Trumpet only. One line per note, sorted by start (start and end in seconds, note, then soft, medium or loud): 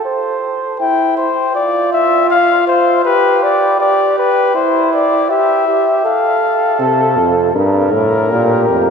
0.80 1.15 G5 medium
1.17 1.54 C5 medium
1.55 1.92 D5 medium
1.92 2.29 E5 medium
2.30 2.66 F5 medium
2.67 3.04 C5 medium
3.05 3.44 B4 medium
3.43 3.79 D5 medium
3.80 4.17 D5 medium
4.18 4.57 B4 medium
4.55 4.92 C5 medium
4.93 5.29 D5 medium
5.31 6.04 E5 medium
6.05 6.79 F5 medium
6.80 7.28 A4 medium
7.55 8.90 A#4 medium